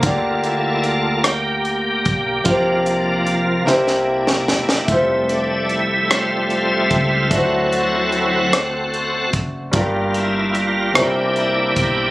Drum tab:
HH |x-x-x-x-x-x-|x-x-x-------|x-x-x-x-x-x-|x-x-x-x-x-x-|
SD |------r-----|------oo-ooo|------r-----|------r-----|
BD |o---------o-|o-----------|o---------o-|o---------o-|

HH |x-x-x-x-x-x-|
SD |------r-----|
BD |o---------o-|